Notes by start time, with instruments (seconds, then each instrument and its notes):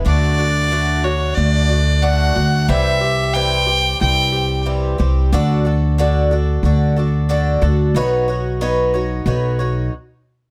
0.05 upright bass D2, twelve-string acoustic guitar D3 A3 D4 F#4, fiddle D5
0.38 twelve-string acoustic guitar A3 D4 F#4
0.71 twelve-string acoustic guitar D3 A3 D4 F#4
1.04 twelve-string acoustic guitar A3 D4 F#4, fiddle C#5
1.35 upright bass D2, twelve-string acoustic guitar D3 A3 D4 F#4, fiddle D5
1.69 twelve-string acoustic guitar A3 D4 F#4
2.02 twelve-string acoustic guitar D3 A3 D4 F#4, fiddle F#5
2.35 upright bass D2, twelve-string acoustic guitar A3 D4 F#4
2.68 upright bass C2, twelve-string acoustic guitar C3 E3 G3 C4 G4, fiddle E5
3.01 twelve-string acoustic guitar G3 C4 G4
3.33 twelve-string acoustic guitar C3 E3 G3 C4 G4, fiddle G5
3.67 twelve-string acoustic guitar G3 C4 G4
4.00 upright bass C2, twelve-string acoustic guitar E3 G3 C4 G4, fiddle G5
4.32 twelve-string acoustic guitar G3 C4 G4
4.66 twelve-string acoustic guitar C3 E3 G3 C4 G4
4.98 upright bass C2, twelve-string acoustic guitar G3 C4 G4
5.33 upright bass D2, twelve-string acoustic guitar D3 D4 F#4 A4
5.65 twelve-string acoustic guitar D4 F#4 A4
5.98 twelve-string acoustic guitar D3 D4 F#4 A4
6.31 twelve-string acoustic guitar D4 F#4 A4
6.63 upright bass D2, twelve-string acoustic guitar D3 D4 F#4 A4
6.96 twelve-string acoustic guitar D4 F#4 A4
7.29 twelve-string acoustic guitar D3 D4 F#4 A4
7.62 upright bass D2, twelve-string acoustic guitar D4 F#4 A4
7.94 upright bass B1, twelve-string acoustic guitar B3 D#4 F#4 C#5
8.28 twelve-string acoustic guitar D#4 F#4 C#5
8.61 twelve-string acoustic guitar B3 D#4 F#4 C#5
8.94 twelve-string acoustic guitar D#4 F#4 C#5
9.26 upright bass B1, twelve-string acoustic guitar B3 D#4 F#4 C#5
9.59 twelve-string acoustic guitar D#4 F#4 C#5